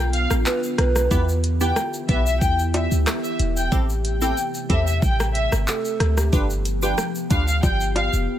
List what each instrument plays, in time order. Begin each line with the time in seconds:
Already playing: 808-style bass B1, ambient pad D3 B3 F4
0.13 violin section F5, closed hi-hat, shaker
0.30 808-style bass A1, cross-stick, shaker
0.46 soft synth lead B4, clap, shaker
0.63 shaker
0.78 808-style bass B1, soft synth lead B4, cross-stick, closed hi-hat, shaker
0.96 cross-stick, shaker
1.11 808-style bass E2, ambient pad E3 G4, synth stab B3 E4 G4 B4, kick, shaker
1.29 shaker
1.44 closed hi-hat, shaker
1.60 synth stab B3 E4 G4 B4, violin section G5, shaker
1.76 cross-stick, shaker
1.93 shaker
2.09 808-style bass B1, synth stab B3 E4 G4 B4, violin section E5, kick, closed hi-hat, shaker
2.26 violin section E5, shaker
2.41 808-style bass E2, violin section G5, kick, shaker
2.59 shaker
2.74 violin section E5, closed hi-hat, high timbale, shaker
2.91 808-style bass D2, shaker
3.06 cross-stick, clap, shaker
3.24 violin section E5, shaker
3.39 808-style bass E1, closed hi-hat, shaker
3.57 violin section G5, shaker
3.72 808-style bass A1, ambient pad C3 A3, synth stab C4 E4 G4 A4, kick, shaker
3.89 shaker
4.05 closed hi-hat, shaker
4.21 synth stab C4 E4 G4 A4, violin section G5, shaker
4.37 shaker
4.54 shaker
4.70 808-style bass E2, synth stab C4 E4 G4 A4, violin section E5, kick, closed hi-hat, shaker
4.87 violin section E5, shaker
5.02 808-style bass A1, violin section G5, kick, shaker
5.20 cross-stick, shaker
5.35 violin section E5, closed hi-hat, shaker
5.52 808-style bass G1, cross-stick, shaker
5.67 soft synth lead A4, clap, shaker
5.85 shaker
6.00 808-style bass D2, cross-stick, closed hi-hat, shaker
6.17 soft synth lead G4, cross-stick, shaker
6.33 808-style bass G1, ambient pad F3 B3 G4, synth stab D4 F4 G4 B4, kick, shaker
6.50 shaker
6.65 closed hi-hat, shaker
6.82 synth stab D4 F4 G4 B4, violin section G5, shaker
6.98 cross-stick, shaker
7.15 shaker
7.30 808-style bass D2, synth stab D4 F4 G4 B4, violin section F5, kick, closed hi-hat, shaker
7.48 violin section F5, shaker
7.63 808-style bass G1, violin section G5, kick, high timbale, shaker
7.80 shaker
7.96 violin section F5, closed hi-hat, high timbale, shaker
8.13 808-style bass F1, shaker